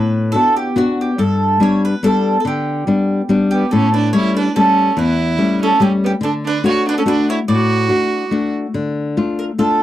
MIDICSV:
0, 0, Header, 1, 4, 480
1, 0, Start_track
1, 0, Key_signature, 2, "major"
1, 0, Tempo, 419874
1, 1350, Time_signature, 3, 2, 24, 8
1, 11237, End_track
2, 0, Start_track
2, 0, Title_t, "Mandolin"
2, 0, Program_c, 0, 25
2, 0, Note_on_c, 0, 71, 75
2, 357, Note_off_c, 0, 71, 0
2, 364, Note_on_c, 0, 69, 91
2, 610, Note_off_c, 0, 69, 0
2, 645, Note_on_c, 0, 67, 73
2, 857, Note_off_c, 0, 67, 0
2, 888, Note_on_c, 0, 66, 76
2, 1113, Note_off_c, 0, 66, 0
2, 1156, Note_on_c, 0, 67, 63
2, 1358, Note_on_c, 0, 69, 80
2, 1373, Note_off_c, 0, 67, 0
2, 1798, Note_off_c, 0, 69, 0
2, 1860, Note_on_c, 0, 73, 89
2, 2076, Note_off_c, 0, 73, 0
2, 2113, Note_on_c, 0, 71, 80
2, 2309, Note_off_c, 0, 71, 0
2, 2333, Note_on_c, 0, 69, 97
2, 2697, Note_off_c, 0, 69, 0
2, 2746, Note_on_c, 0, 69, 59
2, 2804, Note_off_c, 0, 69, 0
2, 2827, Note_on_c, 0, 67, 67
2, 3996, Note_off_c, 0, 67, 0
2, 4010, Note_on_c, 0, 67, 79
2, 4225, Note_off_c, 0, 67, 0
2, 4243, Note_on_c, 0, 69, 75
2, 4477, Note_off_c, 0, 69, 0
2, 4501, Note_on_c, 0, 71, 69
2, 4713, Note_off_c, 0, 71, 0
2, 4721, Note_on_c, 0, 73, 94
2, 4983, Note_off_c, 0, 73, 0
2, 4990, Note_on_c, 0, 71, 86
2, 5207, Note_off_c, 0, 71, 0
2, 5212, Note_on_c, 0, 69, 93
2, 5694, Note_off_c, 0, 69, 0
2, 5699, Note_on_c, 0, 71, 78
2, 6431, Note_off_c, 0, 71, 0
2, 6435, Note_on_c, 0, 69, 85
2, 6637, Note_off_c, 0, 69, 0
2, 6650, Note_on_c, 0, 67, 86
2, 6716, Note_off_c, 0, 67, 0
2, 6929, Note_on_c, 0, 67, 87
2, 6986, Note_off_c, 0, 67, 0
2, 7125, Note_on_c, 0, 69, 84
2, 7191, Note_off_c, 0, 69, 0
2, 7398, Note_on_c, 0, 71, 95
2, 7605, Note_off_c, 0, 71, 0
2, 7610, Note_on_c, 0, 73, 87
2, 7833, Note_off_c, 0, 73, 0
2, 7874, Note_on_c, 0, 71, 93
2, 7965, Note_off_c, 0, 71, 0
2, 7978, Note_on_c, 0, 69, 86
2, 8024, Note_off_c, 0, 69, 0
2, 8093, Note_on_c, 0, 71, 96
2, 8314, Note_off_c, 0, 71, 0
2, 8344, Note_on_c, 0, 73, 97
2, 8403, Note_off_c, 0, 73, 0
2, 8553, Note_on_c, 0, 74, 80
2, 9725, Note_off_c, 0, 74, 0
2, 10733, Note_on_c, 0, 70, 64
2, 10794, Note_off_c, 0, 70, 0
2, 10963, Note_on_c, 0, 69, 76
2, 11237, Note_off_c, 0, 69, 0
2, 11237, End_track
3, 0, Start_track
3, 0, Title_t, "Violin"
3, 0, Program_c, 1, 40
3, 4039, Note_on_c, 1, 59, 53
3, 4240, Note_off_c, 1, 59, 0
3, 4259, Note_on_c, 1, 61, 72
3, 4486, Note_off_c, 1, 61, 0
3, 4509, Note_on_c, 1, 62, 78
3, 4718, Note_off_c, 1, 62, 0
3, 4752, Note_on_c, 1, 64, 77
3, 4975, Note_off_c, 1, 64, 0
3, 4998, Note_on_c, 1, 62, 69
3, 5203, Note_off_c, 1, 62, 0
3, 5223, Note_on_c, 1, 61, 67
3, 5662, Note_off_c, 1, 61, 0
3, 5712, Note_on_c, 1, 64, 83
3, 6381, Note_off_c, 1, 64, 0
3, 6429, Note_on_c, 1, 61, 77
3, 6634, Note_off_c, 1, 61, 0
3, 6653, Note_on_c, 1, 61, 63
3, 6762, Note_off_c, 1, 61, 0
3, 6906, Note_on_c, 1, 59, 66
3, 7004, Note_off_c, 1, 59, 0
3, 7131, Note_on_c, 1, 62, 79
3, 7239, Note_off_c, 1, 62, 0
3, 7376, Note_on_c, 1, 62, 84
3, 7582, Note_off_c, 1, 62, 0
3, 7619, Note_on_c, 1, 66, 81
3, 7838, Note_off_c, 1, 66, 0
3, 7868, Note_on_c, 1, 62, 73
3, 7962, Note_off_c, 1, 62, 0
3, 7983, Note_on_c, 1, 61, 77
3, 8028, Note_off_c, 1, 61, 0
3, 8107, Note_on_c, 1, 62, 77
3, 8322, Note_off_c, 1, 62, 0
3, 8343, Note_on_c, 1, 64, 73
3, 8441, Note_off_c, 1, 64, 0
3, 8578, Note_on_c, 1, 66, 92
3, 9738, Note_off_c, 1, 66, 0
3, 11237, End_track
4, 0, Start_track
4, 0, Title_t, "Nylon-string guitar"
4, 0, Program_c, 2, 24
4, 0, Note_on_c, 2, 45, 65
4, 379, Note_off_c, 2, 45, 0
4, 391, Note_on_c, 2, 59, 45
4, 394, Note_on_c, 2, 62, 39
4, 400, Note_on_c, 2, 66, 51
4, 776, Note_off_c, 2, 59, 0
4, 776, Note_off_c, 2, 62, 0
4, 780, Note_off_c, 2, 66, 0
4, 866, Note_on_c, 2, 59, 55
4, 871, Note_on_c, 2, 62, 46
4, 875, Note_on_c, 2, 66, 60
4, 1251, Note_off_c, 2, 59, 0
4, 1253, Note_off_c, 2, 62, 0
4, 1256, Note_off_c, 2, 66, 0
4, 1352, Note_on_c, 2, 43, 55
4, 1813, Note_off_c, 2, 43, 0
4, 1829, Note_on_c, 2, 55, 54
4, 1835, Note_on_c, 2, 59, 39
4, 1842, Note_on_c, 2, 62, 52
4, 2212, Note_off_c, 2, 55, 0
4, 2216, Note_off_c, 2, 59, 0
4, 2218, Note_off_c, 2, 62, 0
4, 2319, Note_on_c, 2, 55, 53
4, 2323, Note_on_c, 2, 59, 53
4, 2333, Note_on_c, 2, 62, 60
4, 2698, Note_off_c, 2, 55, 0
4, 2702, Note_off_c, 2, 59, 0
4, 2705, Note_off_c, 2, 62, 0
4, 2799, Note_on_c, 2, 50, 54
4, 3260, Note_off_c, 2, 50, 0
4, 3282, Note_on_c, 2, 55, 48
4, 3289, Note_on_c, 2, 59, 39
4, 3291, Note_on_c, 2, 62, 52
4, 3664, Note_off_c, 2, 55, 0
4, 3668, Note_off_c, 2, 62, 0
4, 3669, Note_off_c, 2, 59, 0
4, 3762, Note_on_c, 2, 55, 51
4, 3769, Note_on_c, 2, 59, 42
4, 3774, Note_on_c, 2, 62, 55
4, 4148, Note_off_c, 2, 55, 0
4, 4152, Note_off_c, 2, 59, 0
4, 4155, Note_off_c, 2, 62, 0
4, 4260, Note_on_c, 2, 45, 64
4, 4721, Note_off_c, 2, 45, 0
4, 4727, Note_on_c, 2, 55, 46
4, 4735, Note_on_c, 2, 57, 43
4, 4740, Note_on_c, 2, 61, 45
4, 5112, Note_off_c, 2, 55, 0
4, 5118, Note_off_c, 2, 57, 0
4, 5120, Note_off_c, 2, 61, 0
4, 5217, Note_on_c, 2, 55, 50
4, 5220, Note_on_c, 2, 57, 40
4, 5226, Note_on_c, 2, 61, 47
4, 5596, Note_off_c, 2, 55, 0
4, 5599, Note_off_c, 2, 57, 0
4, 5600, Note_off_c, 2, 61, 0
4, 5678, Note_on_c, 2, 40, 63
4, 6146, Note_off_c, 2, 40, 0
4, 6152, Note_on_c, 2, 55, 41
4, 6157, Note_on_c, 2, 57, 39
4, 6161, Note_on_c, 2, 61, 48
4, 6539, Note_off_c, 2, 55, 0
4, 6540, Note_off_c, 2, 57, 0
4, 6544, Note_off_c, 2, 61, 0
4, 6631, Note_on_c, 2, 55, 52
4, 6639, Note_on_c, 2, 61, 55
4, 6640, Note_on_c, 2, 57, 48
4, 7015, Note_off_c, 2, 55, 0
4, 7018, Note_off_c, 2, 57, 0
4, 7019, Note_off_c, 2, 61, 0
4, 7096, Note_on_c, 2, 50, 59
4, 7567, Note_off_c, 2, 50, 0
4, 7588, Note_on_c, 2, 57, 46
4, 7588, Note_on_c, 2, 62, 43
4, 7593, Note_on_c, 2, 66, 52
4, 7972, Note_off_c, 2, 57, 0
4, 7972, Note_off_c, 2, 62, 0
4, 7973, Note_off_c, 2, 66, 0
4, 8066, Note_on_c, 2, 57, 48
4, 8074, Note_on_c, 2, 66, 53
4, 8079, Note_on_c, 2, 62, 47
4, 8451, Note_off_c, 2, 57, 0
4, 8455, Note_off_c, 2, 66, 0
4, 8458, Note_off_c, 2, 62, 0
4, 8555, Note_on_c, 2, 45, 51
4, 9019, Note_off_c, 2, 45, 0
4, 9020, Note_on_c, 2, 57, 39
4, 9027, Note_on_c, 2, 62, 39
4, 9028, Note_on_c, 2, 66, 42
4, 9413, Note_off_c, 2, 57, 0
4, 9414, Note_off_c, 2, 62, 0
4, 9417, Note_off_c, 2, 66, 0
4, 9501, Note_on_c, 2, 57, 44
4, 9508, Note_on_c, 2, 62, 41
4, 9515, Note_on_c, 2, 66, 52
4, 9894, Note_off_c, 2, 57, 0
4, 9897, Note_off_c, 2, 62, 0
4, 9902, Note_off_c, 2, 66, 0
4, 9995, Note_on_c, 2, 50, 56
4, 10463, Note_off_c, 2, 50, 0
4, 10482, Note_on_c, 2, 57, 45
4, 10488, Note_on_c, 2, 65, 53
4, 10489, Note_on_c, 2, 62, 39
4, 10864, Note_off_c, 2, 57, 0
4, 10867, Note_off_c, 2, 62, 0
4, 10867, Note_off_c, 2, 65, 0
4, 10957, Note_on_c, 2, 57, 46
4, 10963, Note_on_c, 2, 62, 40
4, 10963, Note_on_c, 2, 65, 49
4, 11237, Note_off_c, 2, 57, 0
4, 11237, Note_off_c, 2, 62, 0
4, 11237, Note_off_c, 2, 65, 0
4, 11237, End_track
0, 0, End_of_file